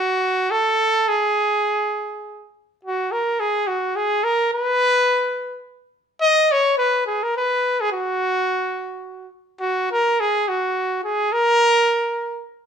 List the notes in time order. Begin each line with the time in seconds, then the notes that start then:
Already playing: F#4
0.51 A4
1.08 G#4
2.83 F#4
3.12 A#4
3.40 G#4
3.67 F#4
3.96 G#4
4.24 A#4
4.53 B4
6.21 D#5
6.52 C#5
6.78 B4
7.06 G#4
7.23 A#4
7.37 B4
7.81 G#4
7.92 F#4
9.60 F#4
9.92 A#4
10.20 G#4
10.48 F#4
11.05 G#4
11.32 A#4